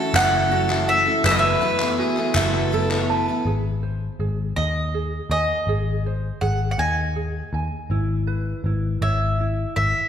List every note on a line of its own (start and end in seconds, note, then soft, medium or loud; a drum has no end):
0.00 3.42 E3 medium
0.00 3.43 A3 medium
0.00 0.14 C#4 medium
0.00 1.21 C#4 medium
0.00 0.14 E4 medium
0.00 0.50 F#4 medium
0.00 3.43 F#4 medium
0.00 0.14 A4 medium
0.00 1.26 A4 loud
0.00 0.15 F#5 loud
0.14 1.07 F#1 loud
0.14 0.50 F#3 medium
0.14 0.51 C#4 medium
0.14 0.52 E4 medium
0.14 0.52 A4 medium
0.14 1.25 E5 medium
0.14 0.88 F#5 loud
0.14 clap loud
0.51 0.70 F#3 medium
0.51 0.70 C#4 medium
0.51 0.70 E4 medium
0.51 1.25 F#4 medium
0.51 0.69 A4 medium
0.70 1.06 C#4 soft
0.70 1.05 E4 medium
0.70 1.05 A4 medium
0.70 clap medium
0.87 1.25 E5 medium
0.87 1.24 F#5 medium
1.06 1.24 C#4 soft
1.06 1.24 E4 soft
1.06 1.24 A4 medium
1.24 1.56 F#1 loud
1.24 1.60 F#3 medium
1.24 1.60 B3 medium
1.24 3.44 B3 medium
1.24 1.61 E4 medium
1.24 1.62 A4 medium
1.24 1.98 B4 loud
1.24 2.72 B4 medium
1.24 1.32 E5 medium
1.24 clap loud
1.31 1.38 D#5 medium
1.39 3.05 E5 medium
1.44 clap soft
1.61 1.80 F#3 medium
1.61 1.80 B3 medium
1.61 1.81 E4 medium
1.61 1.80 A4 medium
1.61 clap soft
1.80 2.18 B3 soft
1.80 2.17 E4 medium
1.80 2.16 A4 medium
1.80 clap medium
1.98 3.46 F#4 medium
1.98 2.37 G#4 medium
2.17 2.36 B3 soft
2.17 2.36 E4 medium
2.17 2.36 A4 medium
2.17 clap soft
2.35 3.29 F#1 loud
2.35 2.71 F#3 loud
2.35 2.72 B3 loud
2.35 2.72 E4 medium
2.35 3.02 A4 medium
2.35 2.73 A4 loud
2.35 3.47 E5 medium
2.35 clap medium
2.54 clap soft
2.72 2.91 F#3 medium
2.72 2.91 B3 medium
2.72 2.91 E4 medium
2.72 3.47 A4 medium
2.72 2.90 A4 medium
2.91 3.29 B3 soft
2.91 3.28 E4 medium
2.91 3.27 A4 medium
2.91 clap medium
3.01 3.11 C#5 medium
3.09 3.46 B4 medium
3.09 3.46 A5 medium
3.28 3.48 B3 soft
3.28 3.47 E4 medium
3.28 3.47 A4 medium
3.45 4.08 G#1 medium
3.45 4.19 G#4 medium
3.83 5.31 C5 medium
4.19 4.51 G#1 medium
4.19 4.93 G#4 medium
4.56 5.20 D#2 medium
4.56 5.30 D#5 medium
4.56 6.05 D#5 medium
4.94 5.68 G#4 medium
5.30 5.46 D#2 medium
5.30 6.01 D#5 medium
5.30 6.80 G#5 medium
5.67 6.30 G#1 medium
5.67 6.40 G#4 medium
6.06 7.54 C5 medium
6.41 6.74 G#1 medium
6.41 7.15 G#4 medium
6.41 6.70 F#5 medium
6.71 6.79 F#5 medium
6.78 7.42 D#2 medium
6.78 7.91 D#5 medium
6.78 7.59 G#5 medium
7.16 7.91 G#4 medium
7.53 7.69 D#2 medium
7.53 7.91 G#5 medium
7.90 8.53 G#1 medium
7.90 8.64 E4 medium
8.27 9.76 B4 medium
8.64 8.96 G#1 medium
8.64 9.39 E4 medium
9.01 9.65 G#1 medium
9.01 10.09 C#5 medium
9.01 9.75 E5 medium
9.40 10.09 E4 medium
9.76 9.92 G#1 medium
9.76 10.09 E5 medium